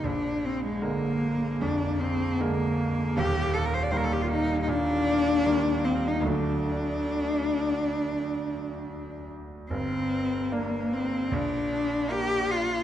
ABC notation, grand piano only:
X:1
M:4/4
L:1/8
Q:1/4=76
K:Bb
V:1 name="Grand piano" clef=bass
B,,,2 [D,_A,B,]2 F,,2 [D,A,B,]2 | [E,,,E,,]2 [E,G,B,]2 B,,2 [E,G,B,]2 | [D,,^F,A,D]8 | G,,,2 [B,D]2 B,,,2 [B,D]2 |]